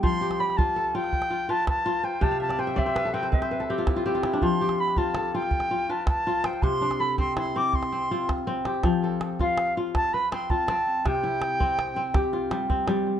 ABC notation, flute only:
X:1
M:12/8
L:1/8
Q:3/8=109
K:Flyd
V:1 name="Flute"
c'2 b a2 g3 a a2 g | a a g e2 g e3 z3 | c'2 b a2 g3 a a2 g | c'2 b c' c' d' c'3 z3 |
z3 f2 z a b c' a3 | g8 z4 |]